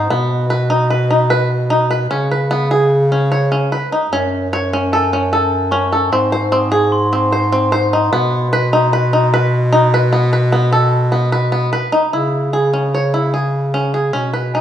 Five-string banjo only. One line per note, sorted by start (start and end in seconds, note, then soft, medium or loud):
0.10 0.45 B3 medium
0.50 0.67 B4 medium
0.70 0.87 D#4 medium
0.90 1.08 B4 medium
1.11 1.28 D#4 medium
1.30 1.65 B4 medium
1.70 1.88 D#4 medium
1.91 2.08 B4 medium
2.11 2.28 C#4 medium
2.31 2.48 B4 medium
2.51 2.68 B3 medium
2.71 3.05 G#4 medium
3.12 3.29 C#4 medium
3.32 3.49 C#5 medium
3.52 3.69 C#4 medium
3.72 3.89 B4 medium
3.92 4.09 D#4 medium
4.13 4.47 C#4 medium
4.53 4.70 C#5 medium
4.73 4.90 C#4 medium
4.93 5.10 A4 medium
5.13 5.30 C#4 medium
5.33 5.67 A4 medium
5.72 5.89 C#4 medium
5.92 6.09 A4 medium
6.13 6.29 C4 medium
6.32 6.49 C5 medium
6.52 6.69 C4 medium
6.72 7.06 G#4 medium
7.13 7.30 C4 medium
7.32 7.50 C5 medium
7.52 7.70 C4 medium
7.72 7.89 C5 medium
7.93 8.10 D#4 medium
8.13 8.47 B3 medium
8.53 8.70 B4 medium
8.73 8.90 D#4 medium
8.93 9.10 B4 medium
9.13 9.30 D#4 medium
9.34 9.68 B4 medium
9.73 9.90 D#4 medium
9.94 10.10 B4 medium
10.13 10.30 B3 medium
10.33 10.50 B4 medium
10.52 10.70 B3 medium
10.73 11.07 A4 medium
11.12 11.29 B3 medium
11.32 11.50 B4 medium
11.52 11.70 B3 medium
11.73 11.90 B4 medium
11.92 12.10 D#4 medium
12.13 12.48 E4 medium
12.53 12.70 G#4 medium
12.73 12.91 C#4 medium
12.94 13.11 C#5 medium
13.14 13.31 E4 medium
13.34 13.68 G#4 medium
13.74 13.91 C#4 medium
13.94 14.11 G#4 medium
14.13 14.31 C#4 medium
14.33 14.51 B4 medium
14.55 14.61 D#4 medium